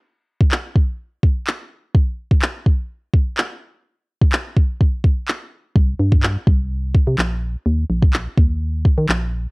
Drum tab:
CP |----x-------x---|----x-------x---|----x-------x---|----x-------x---|
BD |---o--o---o-----|o--o--o---o-----|---o--o-o-o-----|o--o--o---o-----|

CP |----x-------x---|
BD |---o--o---o-----|